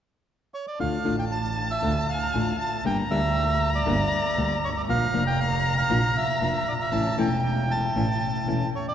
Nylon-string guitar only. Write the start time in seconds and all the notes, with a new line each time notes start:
0.79 D3 A3 D4 F4
1.04 D3 A3 D4 F4
1.82 D3 A3 D4 F4
2.34 D3 A3 D4 F4
2.85 D3 G3 A#3 D4 G4
3.10 D3 G3 A#3 D4 G4
3.86 D3 G3 A#3 D4 G4
4.37 D3 G3 A#3 D4 G4
4.88 F3 A#3 D4 F4
5.14 F3 A#3 D4 F4
5.90 F3 A#3 D4 F4
6.41 F3 A#3 D4 F4
6.91 E3 A3 C#4 E4
7.18 E3 A3 C#4 E4
7.95 E3 A3 C#4 E4
8.47 E3 A3 C#4 E4